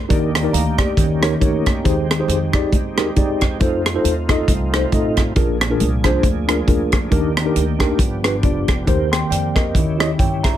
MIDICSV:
0, 0, Header, 1, 5, 480
1, 0, Start_track
1, 0, Key_signature, -3, "major"
1, 0, Tempo, 438596
1, 108, Time_signature, 4, 2, 24, 8
1, 11572, End_track
2, 0, Start_track
2, 0, Title_t, "Tine electric piano"
2, 0, Program_c, 0, 4
2, 93, Note_on_c, 0, 63, 75
2, 97, Note_on_c, 0, 67, 69
2, 102, Note_on_c, 0, 51, 75
2, 103, Note_on_c, 0, 70, 72
2, 110, Note_on_c, 0, 74, 85
2, 322, Note_off_c, 0, 63, 0
2, 324, Note_off_c, 0, 67, 0
2, 327, Note_off_c, 0, 70, 0
2, 330, Note_off_c, 0, 74, 0
2, 470, Note_on_c, 0, 63, 83
2, 476, Note_on_c, 0, 67, 69
2, 480, Note_on_c, 0, 70, 74
2, 488, Note_on_c, 0, 74, 84
2, 583, Note_on_c, 0, 82, 57
2, 584, Note_off_c, 0, 67, 0
2, 586, Note_off_c, 0, 70, 0
2, 589, Note_on_c, 0, 77, 44
2, 590, Note_off_c, 0, 74, 0
2, 667, Note_off_c, 0, 63, 0
2, 811, Note_off_c, 0, 51, 0
2, 842, Note_off_c, 0, 82, 0
2, 845, Note_off_c, 0, 77, 0
2, 857, Note_on_c, 0, 74, 64
2, 866, Note_on_c, 0, 67, 56
2, 1068, Note_on_c, 0, 51, 72
2, 1313, Note_off_c, 0, 74, 0
2, 1318, Note_off_c, 0, 67, 0
2, 1328, Note_on_c, 0, 63, 74
2, 1334, Note_on_c, 0, 67, 64
2, 1339, Note_on_c, 0, 70, 70
2, 1343, Note_on_c, 0, 73, 85
2, 1447, Note_off_c, 0, 63, 0
2, 1450, Note_off_c, 0, 67, 0
2, 1452, Note_off_c, 0, 70, 0
2, 1454, Note_off_c, 0, 73, 0
2, 1536, Note_on_c, 0, 63, 70
2, 1542, Note_on_c, 0, 67, 60
2, 1548, Note_on_c, 0, 70, 54
2, 1553, Note_on_c, 0, 73, 70
2, 1774, Note_off_c, 0, 51, 0
2, 1831, Note_off_c, 0, 63, 0
2, 1834, Note_off_c, 0, 67, 0
2, 1837, Note_off_c, 0, 70, 0
2, 1839, Note_off_c, 0, 73, 0
2, 2015, Note_on_c, 0, 63, 83
2, 2023, Note_on_c, 0, 67, 79
2, 2024, Note_on_c, 0, 51, 74
2, 2031, Note_on_c, 0, 68, 66
2, 2034, Note_on_c, 0, 72, 86
2, 2242, Note_off_c, 0, 63, 0
2, 2246, Note_off_c, 0, 67, 0
2, 2250, Note_off_c, 0, 68, 0
2, 2252, Note_off_c, 0, 72, 0
2, 2393, Note_on_c, 0, 63, 74
2, 2398, Note_on_c, 0, 67, 71
2, 2402, Note_on_c, 0, 68, 80
2, 2412, Note_on_c, 0, 72, 86
2, 2588, Note_off_c, 0, 63, 0
2, 2590, Note_off_c, 0, 67, 0
2, 2592, Note_off_c, 0, 68, 0
2, 2597, Note_off_c, 0, 72, 0
2, 2732, Note_off_c, 0, 51, 0
2, 2768, Note_on_c, 0, 63, 84
2, 2777, Note_on_c, 0, 67, 76
2, 2783, Note_on_c, 0, 68, 72
2, 2789, Note_on_c, 0, 74, 89
2, 3006, Note_off_c, 0, 63, 0
2, 3010, Note_off_c, 0, 67, 0
2, 3014, Note_off_c, 0, 68, 0
2, 3017, Note_off_c, 0, 74, 0
2, 3243, Note_on_c, 0, 63, 72
2, 3254, Note_on_c, 0, 67, 70
2, 3258, Note_on_c, 0, 68, 72
2, 3264, Note_on_c, 0, 70, 74
2, 3364, Note_off_c, 0, 63, 0
2, 3369, Note_off_c, 0, 67, 0
2, 3371, Note_off_c, 0, 68, 0
2, 3374, Note_off_c, 0, 70, 0
2, 3459, Note_on_c, 0, 63, 72
2, 3464, Note_on_c, 0, 67, 55
2, 3471, Note_on_c, 0, 68, 62
2, 3481, Note_on_c, 0, 74, 84
2, 3752, Note_off_c, 0, 63, 0
2, 3754, Note_off_c, 0, 67, 0
2, 3758, Note_off_c, 0, 68, 0
2, 3763, Note_off_c, 0, 74, 0
2, 3941, Note_on_c, 0, 63, 75
2, 3951, Note_on_c, 0, 65, 78
2, 3958, Note_on_c, 0, 69, 72
2, 3963, Note_on_c, 0, 72, 88
2, 4164, Note_off_c, 0, 63, 0
2, 4169, Note_off_c, 0, 65, 0
2, 4173, Note_off_c, 0, 69, 0
2, 4175, Note_off_c, 0, 72, 0
2, 4315, Note_on_c, 0, 63, 84
2, 4320, Note_on_c, 0, 65, 73
2, 4327, Note_on_c, 0, 69, 80
2, 4332, Note_on_c, 0, 72, 86
2, 4508, Note_off_c, 0, 63, 0
2, 4510, Note_off_c, 0, 65, 0
2, 4514, Note_off_c, 0, 69, 0
2, 4516, Note_off_c, 0, 72, 0
2, 4693, Note_on_c, 0, 63, 83
2, 4697, Note_on_c, 0, 65, 73
2, 4705, Note_on_c, 0, 69, 78
2, 4714, Note_on_c, 0, 75, 90
2, 4928, Note_off_c, 0, 63, 0
2, 4930, Note_off_c, 0, 65, 0
2, 4934, Note_off_c, 0, 69, 0
2, 4938, Note_off_c, 0, 75, 0
2, 5181, Note_on_c, 0, 63, 65
2, 5186, Note_on_c, 0, 65, 65
2, 5191, Note_on_c, 0, 69, 68
2, 5199, Note_on_c, 0, 72, 74
2, 5292, Note_off_c, 0, 63, 0
2, 5295, Note_off_c, 0, 65, 0
2, 5297, Note_off_c, 0, 69, 0
2, 5301, Note_off_c, 0, 72, 0
2, 5384, Note_on_c, 0, 63, 69
2, 5393, Note_on_c, 0, 65, 59
2, 5399, Note_on_c, 0, 69, 62
2, 5406, Note_on_c, 0, 75, 79
2, 5674, Note_off_c, 0, 63, 0
2, 5678, Note_off_c, 0, 65, 0
2, 5681, Note_off_c, 0, 69, 0
2, 5685, Note_off_c, 0, 75, 0
2, 5860, Note_on_c, 0, 62, 71
2, 5867, Note_on_c, 0, 65, 72
2, 5870, Note_on_c, 0, 68, 75
2, 5872, Note_on_c, 0, 46, 70
2, 5879, Note_on_c, 0, 70, 92
2, 6084, Note_off_c, 0, 62, 0
2, 6087, Note_off_c, 0, 65, 0
2, 6088, Note_off_c, 0, 68, 0
2, 6093, Note_off_c, 0, 70, 0
2, 6237, Note_on_c, 0, 62, 83
2, 6240, Note_on_c, 0, 65, 65
2, 6246, Note_on_c, 0, 68, 69
2, 6252, Note_on_c, 0, 70, 84
2, 6429, Note_off_c, 0, 62, 0
2, 6431, Note_off_c, 0, 65, 0
2, 6434, Note_off_c, 0, 68, 0
2, 6437, Note_off_c, 0, 70, 0
2, 6575, Note_off_c, 0, 46, 0
2, 6611, Note_on_c, 0, 62, 78
2, 6617, Note_on_c, 0, 65, 73
2, 6624, Note_on_c, 0, 68, 75
2, 6629, Note_on_c, 0, 72, 86
2, 6847, Note_off_c, 0, 62, 0
2, 6850, Note_off_c, 0, 65, 0
2, 6853, Note_off_c, 0, 68, 0
2, 6856, Note_off_c, 0, 72, 0
2, 7092, Note_on_c, 0, 62, 77
2, 7100, Note_on_c, 0, 65, 61
2, 7103, Note_on_c, 0, 68, 63
2, 7112, Note_on_c, 0, 70, 79
2, 7208, Note_off_c, 0, 62, 0
2, 7212, Note_off_c, 0, 65, 0
2, 7213, Note_off_c, 0, 68, 0
2, 7217, Note_off_c, 0, 70, 0
2, 7298, Note_on_c, 0, 62, 67
2, 7302, Note_on_c, 0, 65, 55
2, 7309, Note_on_c, 0, 68, 62
2, 7319, Note_on_c, 0, 70, 65
2, 7591, Note_off_c, 0, 62, 0
2, 7593, Note_off_c, 0, 65, 0
2, 7596, Note_off_c, 0, 68, 0
2, 7602, Note_off_c, 0, 70, 0
2, 7778, Note_on_c, 0, 62, 78
2, 7781, Note_on_c, 0, 63, 72
2, 7784, Note_on_c, 0, 51, 66
2, 7789, Note_on_c, 0, 67, 65
2, 7795, Note_on_c, 0, 70, 96
2, 8003, Note_off_c, 0, 62, 0
2, 8004, Note_off_c, 0, 63, 0
2, 8009, Note_off_c, 0, 67, 0
2, 8011, Note_off_c, 0, 70, 0
2, 8151, Note_on_c, 0, 62, 80
2, 8160, Note_on_c, 0, 63, 73
2, 8165, Note_on_c, 0, 67, 72
2, 8169, Note_on_c, 0, 70, 93
2, 8347, Note_off_c, 0, 62, 0
2, 8351, Note_off_c, 0, 63, 0
2, 8353, Note_off_c, 0, 67, 0
2, 8356, Note_off_c, 0, 70, 0
2, 8492, Note_off_c, 0, 51, 0
2, 8527, Note_on_c, 0, 62, 88
2, 8536, Note_on_c, 0, 63, 69
2, 8539, Note_on_c, 0, 67, 78
2, 8547, Note_on_c, 0, 70, 85
2, 8741, Note_off_c, 0, 62, 0
2, 8746, Note_off_c, 0, 63, 0
2, 8747, Note_off_c, 0, 67, 0
2, 8751, Note_off_c, 0, 70, 0
2, 8753, Note_on_c, 0, 43, 60
2, 9012, Note_on_c, 0, 62, 70
2, 9017, Note_on_c, 0, 65, 67
2, 9024, Note_on_c, 0, 67, 64
2, 9034, Note_on_c, 0, 71, 85
2, 9128, Note_off_c, 0, 62, 0
2, 9131, Note_off_c, 0, 65, 0
2, 9134, Note_off_c, 0, 67, 0
2, 9139, Note_off_c, 0, 71, 0
2, 9226, Note_on_c, 0, 62, 62
2, 9233, Note_on_c, 0, 65, 59
2, 9240, Note_on_c, 0, 67, 59
2, 9246, Note_on_c, 0, 74, 73
2, 9457, Note_off_c, 0, 43, 0
2, 9516, Note_off_c, 0, 62, 0
2, 9520, Note_off_c, 0, 65, 0
2, 9523, Note_off_c, 0, 67, 0
2, 9526, Note_off_c, 0, 74, 0
2, 9702, Note_on_c, 0, 63, 75
2, 9711, Note_on_c, 0, 67, 74
2, 9717, Note_on_c, 0, 51, 67
2, 9717, Note_on_c, 0, 70, 67
2, 9725, Note_on_c, 0, 72, 97
2, 9926, Note_off_c, 0, 63, 0
2, 9931, Note_off_c, 0, 67, 0
2, 9934, Note_off_c, 0, 70, 0
2, 9937, Note_off_c, 0, 72, 0
2, 9977, Note_on_c, 0, 84, 57
2, 9982, Note_on_c, 0, 79, 45
2, 10168, Note_off_c, 0, 79, 0
2, 10177, Note_off_c, 0, 84, 0
2, 10181, Note_on_c, 0, 79, 60
2, 10190, Note_on_c, 0, 74, 52
2, 10420, Note_off_c, 0, 51, 0
2, 10442, Note_off_c, 0, 79, 0
2, 10446, Note_off_c, 0, 74, 0
2, 10453, Note_on_c, 0, 75, 60
2, 10462, Note_on_c, 0, 70, 55
2, 10669, Note_on_c, 0, 51, 67
2, 10912, Note_off_c, 0, 75, 0
2, 10917, Note_off_c, 0, 70, 0
2, 10926, Note_on_c, 0, 64, 80
2, 10933, Note_on_c, 0, 67, 65
2, 10940, Note_on_c, 0, 73, 66
2, 10944, Note_on_c, 0, 75, 85
2, 11047, Note_off_c, 0, 64, 0
2, 11051, Note_off_c, 0, 67, 0
2, 11054, Note_off_c, 0, 73, 0
2, 11056, Note_off_c, 0, 75, 0
2, 11154, Note_on_c, 0, 79, 60
2, 11161, Note_on_c, 0, 73, 48
2, 11377, Note_off_c, 0, 51, 0
2, 11409, Note_off_c, 0, 79, 0
2, 11413, Note_off_c, 0, 73, 0
2, 11419, Note_on_c, 0, 82, 57
2, 11423, Note_on_c, 0, 76, 48
2, 11572, Note_off_c, 0, 76, 0
2, 11572, Note_off_c, 0, 82, 0
2, 11572, End_track
3, 0, Start_track
3, 0, Title_t, "Tonewheel organ"
3, 0, Program_c, 1, 16
3, 122, Note_on_c, 1, 63, 60
3, 125, Note_on_c, 1, 67, 69
3, 126, Note_on_c, 1, 62, 56
3, 127, Note_on_c, 1, 58, 56
3, 1066, Note_off_c, 1, 62, 0
3, 1066, Note_off_c, 1, 67, 0
3, 1067, Note_off_c, 1, 58, 0
3, 1081, Note_on_c, 1, 67, 69
3, 1082, Note_on_c, 1, 58, 52
3, 1082, Note_on_c, 1, 61, 49
3, 2024, Note_off_c, 1, 58, 0
3, 2024, Note_off_c, 1, 61, 0
3, 2027, Note_on_c, 1, 60, 61
3, 2029, Note_on_c, 1, 56, 58
3, 3922, Note_off_c, 1, 60, 0
3, 3923, Note_off_c, 1, 67, 0
3, 3927, Note_off_c, 1, 56, 0
3, 3934, Note_on_c, 1, 65, 71
3, 3935, Note_on_c, 1, 60, 59
3, 3937, Note_on_c, 1, 57, 56
3, 5827, Note_off_c, 1, 63, 0
3, 5839, Note_off_c, 1, 65, 0
3, 5840, Note_off_c, 1, 60, 0
3, 5841, Note_off_c, 1, 57, 0
3, 5866, Note_on_c, 1, 53, 57
3, 5869, Note_on_c, 1, 62, 59
3, 5871, Note_on_c, 1, 58, 59
3, 5871, Note_on_c, 1, 68, 60
3, 7766, Note_off_c, 1, 53, 0
3, 7769, Note_off_c, 1, 58, 0
3, 7769, Note_off_c, 1, 68, 0
3, 7797, Note_on_c, 1, 63, 59
3, 7797, Note_on_c, 1, 67, 68
3, 7800, Note_on_c, 1, 58, 58
3, 8742, Note_off_c, 1, 63, 0
3, 8743, Note_off_c, 1, 58, 0
3, 8757, Note_on_c, 1, 59, 53
3, 8758, Note_on_c, 1, 53, 59
3, 9671, Note_off_c, 1, 62, 0
3, 9694, Note_off_c, 1, 67, 0
3, 9703, Note_off_c, 1, 53, 0
3, 9703, Note_off_c, 1, 59, 0
3, 9715, Note_on_c, 1, 60, 56
3, 9715, Note_on_c, 1, 67, 67
3, 9718, Note_on_c, 1, 58, 52
3, 10663, Note_off_c, 1, 60, 0
3, 10664, Note_off_c, 1, 58, 0
3, 10673, Note_on_c, 1, 64, 56
3, 10680, Note_on_c, 1, 61, 54
3, 11572, Note_off_c, 1, 61, 0
3, 11572, Note_off_c, 1, 64, 0
3, 11572, Note_off_c, 1, 67, 0
3, 11572, End_track
4, 0, Start_track
4, 0, Title_t, "Upright bass"
4, 0, Program_c, 2, 32
4, 113, Note_on_c, 2, 39, 101
4, 518, Note_off_c, 2, 39, 0
4, 582, Note_on_c, 2, 38, 90
4, 992, Note_off_c, 2, 38, 0
4, 1068, Note_on_c, 2, 39, 79
4, 1475, Note_off_c, 2, 39, 0
4, 1548, Note_on_c, 2, 38, 91
4, 1955, Note_off_c, 2, 38, 0
4, 2024, Note_on_c, 2, 39, 96
4, 2433, Note_off_c, 2, 39, 0
4, 2497, Note_on_c, 2, 41, 98
4, 2908, Note_off_c, 2, 41, 0
4, 2982, Note_on_c, 2, 39, 81
4, 3391, Note_off_c, 2, 39, 0
4, 3469, Note_on_c, 2, 40, 85
4, 3875, Note_off_c, 2, 40, 0
4, 3944, Note_on_c, 2, 41, 107
4, 4352, Note_off_c, 2, 41, 0
4, 4424, Note_on_c, 2, 39, 92
4, 4832, Note_off_c, 2, 39, 0
4, 4903, Note_on_c, 2, 36, 91
4, 5312, Note_off_c, 2, 36, 0
4, 5384, Note_on_c, 2, 33, 89
4, 5792, Note_off_c, 2, 33, 0
4, 5870, Note_on_c, 2, 34, 101
4, 6276, Note_off_c, 2, 34, 0
4, 6353, Note_on_c, 2, 36, 86
4, 6757, Note_off_c, 2, 36, 0
4, 6821, Note_on_c, 2, 38, 82
4, 7230, Note_off_c, 2, 38, 0
4, 7304, Note_on_c, 2, 38, 80
4, 7712, Note_off_c, 2, 38, 0
4, 7787, Note_on_c, 2, 39, 100
4, 8194, Note_off_c, 2, 39, 0
4, 8270, Note_on_c, 2, 38, 93
4, 8676, Note_off_c, 2, 38, 0
4, 8744, Note_on_c, 2, 31, 93
4, 9153, Note_off_c, 2, 31, 0
4, 9230, Note_on_c, 2, 29, 83
4, 9715, Note_on_c, 2, 39, 90
4, 9731, Note_off_c, 2, 29, 0
4, 10120, Note_off_c, 2, 39, 0
4, 10183, Note_on_c, 2, 41, 85
4, 10666, Note_off_c, 2, 41, 0
4, 10666, Note_on_c, 2, 39, 100
4, 11076, Note_off_c, 2, 39, 0
4, 11157, Note_on_c, 2, 31, 90
4, 11562, Note_off_c, 2, 31, 0
4, 11572, End_track
5, 0, Start_track
5, 0, Title_t, "Drums"
5, 110, Note_on_c, 9, 42, 66
5, 112, Note_on_c, 9, 36, 102
5, 219, Note_off_c, 9, 42, 0
5, 222, Note_off_c, 9, 36, 0
5, 384, Note_on_c, 9, 42, 64
5, 385, Note_on_c, 9, 37, 105
5, 493, Note_off_c, 9, 42, 0
5, 495, Note_off_c, 9, 37, 0
5, 591, Note_on_c, 9, 42, 109
5, 701, Note_off_c, 9, 42, 0
5, 857, Note_on_c, 9, 36, 73
5, 860, Note_on_c, 9, 37, 108
5, 861, Note_on_c, 9, 42, 53
5, 966, Note_off_c, 9, 36, 0
5, 969, Note_off_c, 9, 37, 0
5, 970, Note_off_c, 9, 42, 0
5, 1064, Note_on_c, 9, 36, 104
5, 1067, Note_on_c, 9, 42, 88
5, 1173, Note_off_c, 9, 36, 0
5, 1176, Note_off_c, 9, 42, 0
5, 1339, Note_on_c, 9, 42, 77
5, 1342, Note_on_c, 9, 37, 125
5, 1448, Note_off_c, 9, 42, 0
5, 1451, Note_off_c, 9, 37, 0
5, 1547, Note_on_c, 9, 42, 66
5, 1548, Note_on_c, 9, 36, 87
5, 1656, Note_off_c, 9, 42, 0
5, 1658, Note_off_c, 9, 36, 0
5, 1816, Note_on_c, 9, 42, 77
5, 1822, Note_on_c, 9, 36, 83
5, 1826, Note_on_c, 9, 37, 100
5, 1926, Note_off_c, 9, 42, 0
5, 1932, Note_off_c, 9, 36, 0
5, 1936, Note_off_c, 9, 37, 0
5, 2028, Note_on_c, 9, 36, 103
5, 2028, Note_on_c, 9, 42, 75
5, 2137, Note_off_c, 9, 42, 0
5, 2138, Note_off_c, 9, 36, 0
5, 2307, Note_on_c, 9, 42, 59
5, 2308, Note_on_c, 9, 37, 115
5, 2416, Note_off_c, 9, 42, 0
5, 2417, Note_off_c, 9, 37, 0
5, 2509, Note_on_c, 9, 42, 97
5, 2618, Note_off_c, 9, 42, 0
5, 2774, Note_on_c, 9, 36, 78
5, 2774, Note_on_c, 9, 37, 101
5, 2774, Note_on_c, 9, 42, 47
5, 2883, Note_off_c, 9, 37, 0
5, 2884, Note_off_c, 9, 36, 0
5, 2884, Note_off_c, 9, 42, 0
5, 2982, Note_on_c, 9, 36, 106
5, 2985, Note_on_c, 9, 42, 86
5, 3092, Note_off_c, 9, 36, 0
5, 3094, Note_off_c, 9, 42, 0
5, 3254, Note_on_c, 9, 42, 73
5, 3257, Note_on_c, 9, 37, 125
5, 3363, Note_off_c, 9, 42, 0
5, 3367, Note_off_c, 9, 37, 0
5, 3461, Note_on_c, 9, 42, 70
5, 3466, Note_on_c, 9, 36, 87
5, 3570, Note_off_c, 9, 42, 0
5, 3576, Note_off_c, 9, 36, 0
5, 3731, Note_on_c, 9, 42, 75
5, 3740, Note_on_c, 9, 36, 71
5, 3741, Note_on_c, 9, 37, 97
5, 3841, Note_off_c, 9, 42, 0
5, 3850, Note_off_c, 9, 36, 0
5, 3850, Note_off_c, 9, 37, 0
5, 3945, Note_on_c, 9, 42, 74
5, 3948, Note_on_c, 9, 36, 98
5, 4054, Note_off_c, 9, 42, 0
5, 4058, Note_off_c, 9, 36, 0
5, 4223, Note_on_c, 9, 42, 64
5, 4224, Note_on_c, 9, 37, 112
5, 4332, Note_off_c, 9, 42, 0
5, 4334, Note_off_c, 9, 37, 0
5, 4430, Note_on_c, 9, 42, 99
5, 4540, Note_off_c, 9, 42, 0
5, 4695, Note_on_c, 9, 36, 77
5, 4698, Note_on_c, 9, 37, 104
5, 4698, Note_on_c, 9, 42, 53
5, 4804, Note_off_c, 9, 36, 0
5, 4807, Note_off_c, 9, 37, 0
5, 4808, Note_off_c, 9, 42, 0
5, 4903, Note_on_c, 9, 36, 92
5, 4903, Note_on_c, 9, 42, 97
5, 5012, Note_off_c, 9, 36, 0
5, 5013, Note_off_c, 9, 42, 0
5, 5181, Note_on_c, 9, 42, 70
5, 5184, Note_on_c, 9, 37, 111
5, 5290, Note_off_c, 9, 42, 0
5, 5294, Note_off_c, 9, 37, 0
5, 5386, Note_on_c, 9, 42, 69
5, 5389, Note_on_c, 9, 36, 84
5, 5496, Note_off_c, 9, 42, 0
5, 5498, Note_off_c, 9, 36, 0
5, 5654, Note_on_c, 9, 42, 71
5, 5661, Note_on_c, 9, 36, 74
5, 5664, Note_on_c, 9, 37, 85
5, 5763, Note_off_c, 9, 42, 0
5, 5770, Note_off_c, 9, 36, 0
5, 5773, Note_off_c, 9, 37, 0
5, 5862, Note_on_c, 9, 42, 71
5, 5868, Note_on_c, 9, 36, 95
5, 5972, Note_off_c, 9, 42, 0
5, 5978, Note_off_c, 9, 36, 0
5, 6141, Note_on_c, 9, 42, 66
5, 6142, Note_on_c, 9, 37, 110
5, 6250, Note_off_c, 9, 42, 0
5, 6252, Note_off_c, 9, 37, 0
5, 6348, Note_on_c, 9, 42, 99
5, 6457, Note_off_c, 9, 42, 0
5, 6611, Note_on_c, 9, 37, 101
5, 6612, Note_on_c, 9, 42, 47
5, 6614, Note_on_c, 9, 36, 78
5, 6721, Note_off_c, 9, 37, 0
5, 6721, Note_off_c, 9, 42, 0
5, 6723, Note_off_c, 9, 36, 0
5, 6822, Note_on_c, 9, 36, 94
5, 6823, Note_on_c, 9, 42, 84
5, 6931, Note_off_c, 9, 36, 0
5, 6933, Note_off_c, 9, 42, 0
5, 7096, Note_on_c, 9, 42, 67
5, 7099, Note_on_c, 9, 37, 109
5, 7205, Note_off_c, 9, 42, 0
5, 7209, Note_off_c, 9, 37, 0
5, 7306, Note_on_c, 9, 42, 66
5, 7307, Note_on_c, 9, 36, 93
5, 7415, Note_off_c, 9, 42, 0
5, 7417, Note_off_c, 9, 36, 0
5, 7572, Note_on_c, 9, 42, 61
5, 7581, Note_on_c, 9, 36, 83
5, 7582, Note_on_c, 9, 37, 100
5, 7682, Note_off_c, 9, 42, 0
5, 7690, Note_off_c, 9, 36, 0
5, 7691, Note_off_c, 9, 37, 0
5, 7787, Note_on_c, 9, 42, 75
5, 7789, Note_on_c, 9, 36, 94
5, 7897, Note_off_c, 9, 42, 0
5, 7898, Note_off_c, 9, 36, 0
5, 8065, Note_on_c, 9, 42, 70
5, 8067, Note_on_c, 9, 37, 111
5, 8175, Note_off_c, 9, 42, 0
5, 8176, Note_off_c, 9, 37, 0
5, 8271, Note_on_c, 9, 42, 101
5, 8380, Note_off_c, 9, 42, 0
5, 8535, Note_on_c, 9, 36, 76
5, 8539, Note_on_c, 9, 37, 105
5, 8540, Note_on_c, 9, 42, 49
5, 8645, Note_off_c, 9, 36, 0
5, 8649, Note_off_c, 9, 37, 0
5, 8649, Note_off_c, 9, 42, 0
5, 8743, Note_on_c, 9, 36, 109
5, 8748, Note_on_c, 9, 42, 88
5, 8853, Note_off_c, 9, 36, 0
5, 8857, Note_off_c, 9, 42, 0
5, 9018, Note_on_c, 9, 42, 73
5, 9021, Note_on_c, 9, 37, 113
5, 9127, Note_off_c, 9, 42, 0
5, 9130, Note_off_c, 9, 37, 0
5, 9224, Note_on_c, 9, 42, 67
5, 9229, Note_on_c, 9, 36, 86
5, 9334, Note_off_c, 9, 42, 0
5, 9338, Note_off_c, 9, 36, 0
5, 9498, Note_on_c, 9, 42, 77
5, 9504, Note_on_c, 9, 36, 88
5, 9508, Note_on_c, 9, 37, 95
5, 9608, Note_off_c, 9, 42, 0
5, 9613, Note_off_c, 9, 36, 0
5, 9617, Note_off_c, 9, 37, 0
5, 9712, Note_on_c, 9, 36, 95
5, 9712, Note_on_c, 9, 42, 72
5, 9821, Note_off_c, 9, 36, 0
5, 9821, Note_off_c, 9, 42, 0
5, 9989, Note_on_c, 9, 42, 64
5, 9990, Note_on_c, 9, 37, 110
5, 10098, Note_off_c, 9, 42, 0
5, 10100, Note_off_c, 9, 37, 0
5, 10198, Note_on_c, 9, 42, 103
5, 10308, Note_off_c, 9, 42, 0
5, 10460, Note_on_c, 9, 36, 79
5, 10465, Note_on_c, 9, 37, 99
5, 10466, Note_on_c, 9, 42, 45
5, 10569, Note_off_c, 9, 36, 0
5, 10575, Note_off_c, 9, 37, 0
5, 10576, Note_off_c, 9, 42, 0
5, 10668, Note_on_c, 9, 36, 93
5, 10675, Note_on_c, 9, 42, 86
5, 10778, Note_off_c, 9, 36, 0
5, 10784, Note_off_c, 9, 42, 0
5, 10945, Note_on_c, 9, 42, 64
5, 10948, Note_on_c, 9, 37, 112
5, 11054, Note_off_c, 9, 42, 0
5, 11058, Note_off_c, 9, 37, 0
5, 11154, Note_on_c, 9, 36, 97
5, 11156, Note_on_c, 9, 42, 68
5, 11264, Note_off_c, 9, 36, 0
5, 11265, Note_off_c, 9, 42, 0
5, 11423, Note_on_c, 9, 42, 74
5, 11428, Note_on_c, 9, 36, 79
5, 11433, Note_on_c, 9, 37, 90
5, 11533, Note_off_c, 9, 42, 0
5, 11537, Note_off_c, 9, 36, 0
5, 11543, Note_off_c, 9, 37, 0
5, 11572, End_track
0, 0, End_of_file